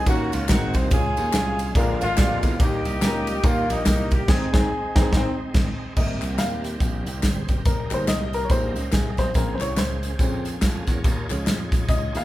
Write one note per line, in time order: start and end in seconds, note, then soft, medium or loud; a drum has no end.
0.06 0.29 D#2 loud
0.06 0.46 D#3 medium
0.06 0.48 D#3 medium
0.06 0.49 F#3 medium
0.06 0.40 A#3 medium
0.06 0.49 A#3 medium
0.06 0.46 A#3 medium
0.06 0.40 C#4 medium
0.06 0.46 C#4 medium
0.06 0.49 C#4 medium
0.06 0.41 D#4 medium
0.06 0.41 F#4 medium
0.06 0.33 F#4 medium
0.06 0.49 F#4 medium
0.06 0.41 C#5 medium
0.06 kick loud
0.06 ride medium
0.06 tambourine medium
0.32 0.47 C#2 loud
0.32 0.49 F4 medium
0.32 ride medium
0.32 tambourine medium
0.48 0.71 G#1 loud
0.48 0.88 G#2 medium
0.48 0.91 D#3 medium
0.48 0.82 G#3 medium
0.48 0.90 G#3 medium
0.48 0.92 A#3 medium
0.48 0.89 A#3 medium
0.48 0.82 C4 medium
0.48 0.92 C4 medium
0.48 0.89 C4 medium
0.48 0.83 D#4 medium
0.48 0.83 F#4 medium
0.48 0.75 F#4 loud
0.48 0.92 F#4 medium
0.48 0.83 A#4 medium
0.48 kick medium
0.48 snare loud
0.48 clap loud
0.48 ride medium
0.48 tambourine medium
0.74 0.89 C2 medium
0.74 0.92 C5 medium
0.74 kick medium
0.74 ride medium
0.74 tambourine medium
0.91 1.13 C#2 loud
0.91 1.55 C#3 medium
0.91 1.74 G#3 medium
0.91 1.25 C#4 medium
0.91 1.74 C#4 medium
0.91 1.72 C#4 medium
0.91 1.74 F4 medium
0.91 1.25 F4 medium
0.91 1.72 F4 medium
0.91 0.98 G4 medium
0.91 1.72 G#4 loud
0.91 kick loud
0.91 ride medium
0.91 tambourine medium
0.97 1.28 G#4 medium
1.17 1.31 D#2 loud
1.17 ride medium
1.17 tambourine medium
1.33 1.70 C2 loud
1.33 1.67 C#4 medium
1.33 1.67 F4 medium
1.33 1.67 G#4 medium
1.33 snare loud
1.33 clap loud
1.33 ride medium
1.33 tambourine loud
1.59 ride medium
1.59 tambourine medium
1.75 1.97 A#1 loud
1.75 2.39 A#2 medium
1.75 2.59 D3 medium
1.75 2.58 F3 medium
1.75 2.09 G#3 medium
1.75 2.58 G#3 medium
1.75 2.09 A#3 medium
1.75 2.59 A#3 medium
1.75 2.09 D4 loud
1.75 2.10 F4 medium
1.75 2.59 F4 loud
1.75 2.10 A#4 loud
1.75 kick loud
1.75 ride medium
1.75 tambourine medium
2.01 2.20 G#1 loud
2.01 2.56 G#3 medium
2.01 2.56 D4 medium
2.01 2.40 F4 loud
2.01 ride medium
2.01 tambourine medium
2.17 2.40 F2 loud
2.17 2.51 G#3 medium
2.17 2.51 A#3 medium
2.17 2.51 D4 medium
2.17 2.51 F4 medium
2.17 2.24 F#4 medium
2.17 kick loud
2.17 snare loud
2.17 clap medium
2.17 ride medium
2.17 tambourine loud
2.23 2.54 G4 medium
2.43 2.57 E2 loud
2.43 2.59 F4 medium
2.43 kick medium
2.43 ride medium
2.43 tambourine medium
2.59 2.82 D#2 loud
2.59 3.23 D#3 medium
2.59 4.25 G3 medium
2.59 2.93 A#3 medium
2.59 3.40 A#3 medium
2.59 4.25 A#3 medium
2.59 2.93 D#4 medium
2.59 4.25 D#4 medium
2.59 3.40 D#4 medium
2.59 3.44 G4 medium
2.59 2.94 G4 medium
2.59 kick loud
2.59 ride medium
2.59 tambourine medium
2.85 2.99 C2 medium
2.85 ride medium
2.85 tambourine medium
3.01 3.38 C#2 loud
3.01 3.35 A#3 medium
3.01 3.35 D#4 medium
3.01 3.08 G#4 medium
3.01 snare loud
3.01 clap loud
3.01 ride medium
3.01 tambourine loud
3.07 3.38 A#4 medium
3.27 ride medium
3.27 tambourine medium
3.44 3.66 D#2 loud
3.44 3.78 A#3 medium
3.44 4.25 A#3 medium
3.44 3.78 D#4 medium
3.44 3.70 F4 medium
3.44 3.78 G4 medium
3.44 kick loud
3.44 ride medium
3.44 tambourine medium
3.70 3.84 A#1 loud
3.70 3.85 D#4 medium
3.70 ride medium
3.70 tambourine medium
3.86 4.22 C2 loud
3.86 4.20 A#3 medium
3.86 4.20 D#4 medium
3.86 4.10 D#4 medium
3.86 4.20 G4 medium
3.86 kick loud
3.86 snare loud
3.86 clap medium
3.86 ride medium
3.86 tambourine medium
4.11 4.29 G4 medium
4.11 kick medium
4.11 ride medium
4.11 tambourine medium
4.28 4.46 G#1 loud
4.28 4.46 G#2 medium
4.28 5.94 G#3 medium
4.28 4.45 C4 medium
4.28 5.94 C4 medium
4.28 5.09 C4 medium
4.28 5.94 D#4 medium
4.28 4.46 D#4 medium
4.28 5.09 D#4 medium
4.28 4.46 G#4 medium
4.28 5.13 G#4 medium
4.28 kick loud
4.28 snare loud
4.28 crash loud
4.53 4.65 G#1 loud
4.53 4.65 G#2 loud
4.53 4.65 C4 medium
4.53 4.65 D#4 loud
4.53 4.65 G#4 loud
4.53 kick loud
4.53 snare loud
4.95 5.07 G#1 loud
4.95 5.07 C4 loud
4.95 5.07 D#4 loud
4.95 kick loud
4.95 snare loud
5.02 5.10 G#4 loud
5.12 5.30 G#1 loud
5.12 5.30 D#4 loud
5.12 kick loud
5.12 snare loud
5.17 5.32 C4 loud
5.54 5.72 G#1 loud
5.54 kick loud
5.54 snare loud
5.54 crash medium
5.96 6.19 G#1 medium
5.96 6.61 C3 soft
5.96 6.61 G3 soft
5.96 7.63 G3 medium
5.96 6.61 A#3 soft
5.96 7.63 C4 soft
5.96 7.21 G4 soft
5.96 6.03 G#4 medium
5.96 6.40 D#5 medium
5.96 kick loud
5.96 crash medium
5.96 tambourine medium
6.02 7.24 A#4 medium
6.22 6.37 C2 medium
6.22 clap medium
6.22 closed hi-hat medium
6.22 tambourine soft
6.38 6.75 D#2 medium
6.38 6.63 F5 loud
6.38 snare medium
6.38 clap medium
6.38 closed hi-hat medium
6.38 tambourine medium
6.64 snare soft
6.64 closed hi-hat medium
6.64 tambourine soft
6.80 7.03 A#1 medium
6.80 kick loud
6.80 closed hi-hat medium
6.80 tambourine medium
7.06 7.21 C2 loud
7.06 closed hi-hat medium
7.06 tambourine medium
7.23 7.46 G1 medium
7.23 7.48 G#4 medium
7.23 7.48 C5 medium
7.23 kick medium
7.23 snare loud
7.23 clap medium
7.23 closed hi-hat medium
7.23 tambourine medium
7.48 7.63 F#1 medium
7.48 7.65 G4 soft
7.48 7.64 A#4 medium
7.48 kick medium
7.48 closed hi-hat medium
7.48 tambourine soft
7.65 7.87 F1 medium
7.65 9.32 G#3 medium
7.65 9.32 D#4 soft
7.65 9.32 G4 soft
7.65 9.32 A#4 medium
7.65 7.92 A#4 medium
7.65 kick loud
7.65 closed hi-hat loud
7.65 tambourine medium
7.90 8.05 G1 medium
7.90 8.17 D#3 medium
7.90 8.17 G3 soft
7.90 8.17 G#3 soft
7.90 8.17 A#3 medium
7.90 8.09 C5 loud
7.90 clap medium
7.90 closed hi-hat medium
7.90 tambourine medium
8.08 8.44 C2 medium
8.08 8.35 D#5 loud
8.08 snare loud
8.08 clap medium
8.08 closed hi-hat medium
8.08 tambourine loud
8.33 8.46 A#4 loud
8.33 closed hi-hat medium
8.33 tambourine medium
8.45 8.50 C#5 medium
8.50 8.76 A#1 medium
8.50 8.73 D#3 soft
8.50 8.73 G3 soft
8.50 8.74 G#3 soft
8.50 8.74 A#3 medium
8.50 8.94 C5 loud
8.50 kick loud
8.50 closed hi-hat medium
8.50 tambourine medium
8.76 8.90 C#2 medium
8.76 closed hi-hat medium
8.76 tambourine medium
8.92 9.15 C2 loud
8.92 9.19 G#4 medium
8.92 kick medium
8.92 snare loud
8.92 clap medium
8.92 closed hi-hat medium
8.92 tambourine medium
9.17 9.33 B1 medium
9.17 9.34 C5 loud
9.17 kick medium
9.17 snare soft
9.17 closed hi-hat medium
9.17 tambourine soft
9.34 9.57 A#1 loud
9.34 9.66 C#3 soft
9.34 9.66 G#3 soft
9.34 11.01 A#3 medium
9.34 9.66 C4 medium
9.34 11.01 C#4 medium
9.34 11.01 G#4 medium
9.34 9.55 A#4 medium
9.34 10.59 C5 medium
9.34 kick loud
9.34 closed hi-hat medium
9.34 tambourine medium
9.55 9.61 C5 medium
9.61 9.75 C2 medium
9.61 9.78 C#5 loud
9.61 clap medium
9.61 closed hi-hat medium
9.61 tambourine medium
9.77 10.14 C#2 medium
9.77 10.17 C5 medium
9.77 snare loud
9.77 clap medium
9.77 closed hi-hat medium
9.77 tambourine medium
10.03 closed hi-hat medium
10.03 tambourine medium
10.19 10.55 F2 loud
10.19 10.43 C#3 medium
10.19 10.43 G#3 soft
10.19 10.44 C4 medium
10.19 kick loud
10.19 closed hi-hat medium
10.19 tambourine medium
10.45 closed hi-hat medium
10.45 tambourine medium
10.61 10.84 F2 medium
10.61 10.87 F5 medium
10.61 10.87 G#5 medium
10.61 kick medium
10.61 snare loud
10.61 clap medium
10.61 closed hi-hat loud
10.61 tambourine medium
10.87 11.02 E2 medium
10.87 11.28 A#4 medium
10.87 11.03 C#5 medium
10.87 kick medium
10.87 snare soft
10.87 closed hi-hat medium
10.87 tambourine medium
11.03 11.26 D#2 loud
11.03 12.24 D#4 medium
11.03 12.24 F4 medium
11.03 12.24 G#4 medium
11.03 12.24 C#5 medium
11.03 kick loud
11.03 closed hi-hat medium
11.03 tambourine medium
11.30 11.49 C#2 medium
11.30 11.55 F3 medium
11.30 11.56 G#3 medium
11.30 11.56 C#4 medium
11.30 clap medium
11.30 closed hi-hat medium
11.30 tambourine medium
11.47 11.83 F2 medium
11.47 snare loud
11.47 clap medium
11.47 closed hi-hat medium
11.47 tambourine medium
11.72 kick loud
11.72 snare soft
11.72 closed hi-hat medium
11.72 tambourine medium
11.89 12.11 C#2 medium
11.89 12.18 D#5 loud
11.89 kick loud
11.89 closed hi-hat medium
11.89 tambourine medium
12.15 12.24 D#2 medium
12.15 12.24 F5 medium
12.15 closed hi-hat medium
12.15 tambourine medium